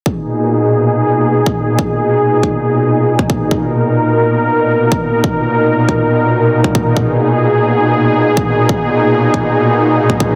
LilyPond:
<<
  \new Staff \with { instrumentName = "Supersaw synth" } { \time 4/4 \key gis \minor \tempo 4 = 139 << { gis'1~ | gis'1 | ais'1~ | ais'1 |
gis'1~ | gis'1 | } \\ { <ais, b, dis'>1~ | <ais, b, dis'>1~ | <ais, b, dis'>1~ | <ais, b, dis'>1~ |
<ais, b, dis'>1~ | <ais, b, dis'>1 | } >> }
  \new DrumStaff \with { instrumentName = "Drums" } \drummode { \time 4/4 bd4 r4 r4 r16 bd8. | bd4 r8 bd8 r4 r16 bd16 bd8 | bd4 r4 r4 r16 bd8. | bd4 r8 bd8 r4 r16 bd16 bd8 |
bd4 r4 r4 r16 bd8. | bd4 r8 bd8 r4 r16 bd16 bd8 | }
>>